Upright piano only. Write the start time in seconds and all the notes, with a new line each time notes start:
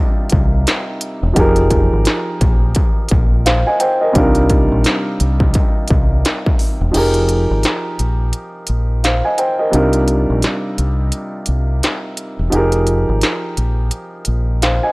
Already playing: C3 G3 D4 D#4 F4 A#4 D#5
1.33 F3 D#4 G4
1.38 G#4 A#4
3.46 C5 F5
3.67 D#5 G#5
3.80 C5 G5
4.01 A#4 D#5
4.12 C3 G3 D4 D#4
4.17 F4 A#4
6.91 F3 D#4 G4
6.96 G#4 A#4
9.04 C5 F5
9.25 D#5 G#5
9.38 C5 G5
9.59 A#4 D#5
9.70 C3 G3 D4 D#4
9.75 F4 A#4
12.50 F3 D#4 G4
12.54 G#4 A#4
14.62 C5 F5
14.83 D#5 G#5